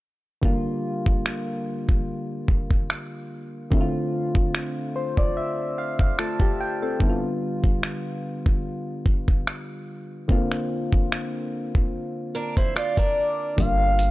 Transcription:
0.42 D3 G3 A#3 F4, kick
1.06 kick
1.26 finger snap
1.89 kick
2.48 kick
2.71 kick
2.90 finger snap
3.71 D3 A3 C4 E4, kick
3.81 F4
4.35 kick
4.55 finger snap
4.96 C5
5.17 D5, kick
5.37 E5
5.78 F5
5.99 F5, kick
6.19 A3 F4 A5, finger snap
6.40 G4, kick
6.61 G5
6.82 C4 A4
6.99 D3 G3 B3 E4, kick
7.09 F4
7.64 kick
7.83 finger snap
8.46 kick
9.06 kick
9.28 kick
9.47 finger snap
10.28 D3 A#3 C4 F4, kick
10.52 finger snap
10.93 kick
11.12 finger snap
11.75 kick
12.35 D4 A#4
12.57 E4 C5, kick
12.76 F4 D5, finger snap
12.97 D4 A#4, kick
13.57 G1 D3 G3 A#3 F4 F5, kick, closed hi-hat
13.99 closed hi-hat

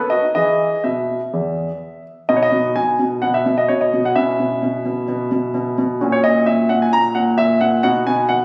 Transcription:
0.00 A4
0.10 F#4 D#5
0.23 D#4
0.35 E3 E4 G#4 D#5
0.84 B2 E5
1.33 E2
2.29 B2 D#4 F#4 D#5
2.36 C#5
2.43 D#5
2.52 B2
2.76 B2 G#5
2.99 B2
3.22 B2 F#5
3.34 E5
3.46 B2
3.58 D#5
3.68 B2 C#5
3.81 D#5
3.93 B2
4.05 F#5
4.16 B2 C#4 E4 E5
4.40 B2
4.63 B2
4.85 B2
5.08 B2
5.32 B2
5.54 B2
5.78 B2
6.01 A#2 C#4 F#4
6.12 C#5
6.24 A#2 D#5
6.46 A#2 E5
6.69 A#2 F#5
6.82 G#5
6.93 A#2 A#5
7.15 A#2 F#5
7.38 A#2 E5
7.61 A#2 F#5
7.83 B2 D#4 F#4 F#5
8.07 B2 G#5
8.29 B2 F#5

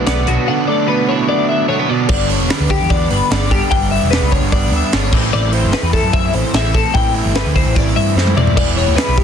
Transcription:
Already playing: D3 A3 E4
0.07 B1 B2 F#3 B3 D4 D5, snare, closed hi-hat
0.27 B1 B2 F#3 B3 D4 F#4, closed hi-hat
0.47 B2 D3 F#3 B3 D4 F#5
0.68 F#3 A3 B3 D4 D5
0.88 B2 F#3 B3 D4 B4
1.08 F#3 B3 D4 E4 C#5
1.29 A3 D5
1.49 E4 E5
1.68 B2 F#3 A3 B3 D4 C#5
1.79 B3
1.88 B2 F#3 B3 D4 D5
2.09 G1 G2 D3 G3 B3 D4 D5, kick, crash
2.29 G3 B3 D4 C#5, open hi-hat
2.40 E1
2.49 G2 D3 G3 B3 D4 B4, snare, open hi-hat
2.60 D2
2.69 G3 B3 D4 G4, kick, open hi-hat
2.81 E2
2.90 D5, kick, open hi-hat
3.11 G1 B4, open hi-hat
3.31 G1 D3 G3 B3 D4 D5, snare, open hi-hat
3.51 G1 G3 B3 D4 G4, kick, open hi-hat
3.71 G1 G2 D3 G3 B3 D4 G5, kick, open hi-hat
3.91 G3 B3 D4 E5, open hi-hat
4.03 E1
4.11 G2 D3 G3 D4 B4, snare, open hi-hat
4.15 B3
4.22 C#2
4.31 G3 B3 D4 C#5, kick, open hi-hat
4.42 G1
4.52 D5, kick, open hi-hat
4.72 D2 E5, open hi-hat
4.93 G1 D3 G3 B3 D4 C#5, snare, open hi-hat
5.13 A1 A2 E3 A3 C4 E4 D5, kick, crash
5.33 A1 A2 E3 A3 C4 E4 D5
5.53 A3 C4 E4 C5, open hi-hat
5.63 G1
5.73 A2 E3 A3 C4 E4 B4, snare
5.83 E2
5.93 A3 C4 E4 A4, kick, open hi-hat
6.03 F#2
6.13 E5, kick, open hi-hat
6.33 A1 C5, open hi-hat
6.53 A1 E3 A3 C4 E4 E5, snare, open hi-hat
6.74 A3 C4 E4 A4, kick, open hi-hat
6.94 A1 A2 E3 A3 C4 E4 G5, kick, open hi-hat
7.15 A3 C4 E4 E5, open hi-hat
7.25 G1
7.35 A2 E3 A3 C4 E4 B4, snare, open hi-hat
7.46 D2
7.55 A3 C4 E4 C5, kick, open hi-hat
7.66 A1
7.75 D5, kick, open hi-hat
7.96 G2 E5, open hi-hat
8.16 F#2 E3 A3 C4 E4 C5, snare
8.27 high tom
8.36 E2 A3 C4 E4 D5, mid tom
8.47 floor tom
8.56 E1 E3 G3 B3 E4 D5, kick, crash
8.76 G3 B3 E4 C#5, open hi-hat
8.88 D2
8.96 E3 G3 B3 E4 B4, snare, open hi-hat
9.08 B1
9.17 G3 B3 E4 G4, kick, open hi-hat

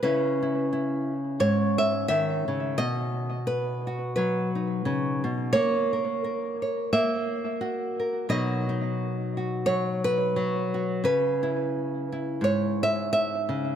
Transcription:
0.03 C#3 C#4 E4 B4
0.42 E4
0.73 E4
1.40 G#2 C#5
1.78 E5
2.08 D#3 E5
2.48 C#3
2.78 B2 D#5
3.47 B4
3.87 F#4
4.16 F#3 B4
4.55 D#4
4.85 C#3
5.24 B2
5.53 A#3 C#5
5.93 A#4
6.24 A#4
6.62 C#5
6.93 A#3 E5
7.61 F#4
8.00 A#4
8.29 B2 F#3 D#4 F#4 D#5
8.69 D#4
9.37 F#4
9.66 F#3 C#5
10.04 B4
10.36 F#3
10.74 F#4
11.04 C#3 B4
11.43 E4
12.12 E4
12.41 G#2 C#5
12.83 E5
13.13 E5
13.49 C#3

